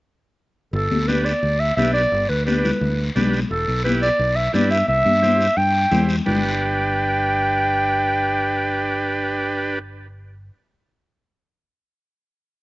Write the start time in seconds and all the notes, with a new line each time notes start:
0.73 G1 A4, long guiro
0.90 D2, high conga
1.08 D4 G4 B4, high conga, short guiro
1.25 D5, short guiro
1.43 D2, long guiro
1.60 E5
1.77 B1 D4 G4 B4 E5, high conga, short guiro
1.94 D5, short guiro
2.12 G1, long guiro
2.29 D2 B4
2.45 D4 G4 B4, high conga, short guiro
2.65 low conga, short guiro
2.81 D2, long guiro
3.15 B1 D4 G4 B4, high conga, low conga, short guiro
3.33 short guiro
3.51 E1 A4, long guiro
3.68 B1
3.84 E4 G4 B4, high conga, short guiro
4.02 D5, short guiro
4.19 B1, long guiro
4.36 E5
4.53 G2 E4 G4 B4 D5, high conga, short guiro
4.71 E5, short guiro
4.88 C2 E5, long guiro
5.05 G2, high conga
5.22 E4 G4 C5, high conga, short guiro
5.41 short guiro
5.57 G2 G5, long guiro
5.91 E2 E4 G4 C5, high conga, low conga, short guiro
6.09 short guiro
6.26 G1 D4 G4 B4 G5, low conga, long guiro